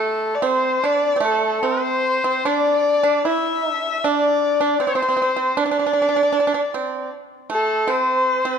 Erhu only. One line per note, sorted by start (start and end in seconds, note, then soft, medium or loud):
0.00 0.36 A4 medium
0.35 0.48 D5 medium
0.46 0.87 C5 medium
0.86 1.26 D5 medium
1.25 1.67 A4 medium
1.65 2.48 C5 medium
2.46 3.28 D5 medium
3.26 4.06 E5 medium
4.04 4.83 D5 medium
4.82 5.61 C5 medium
5.60 7.12 D5 medium
7.51 7.92 A4 medium
7.90 8.59 C5 medium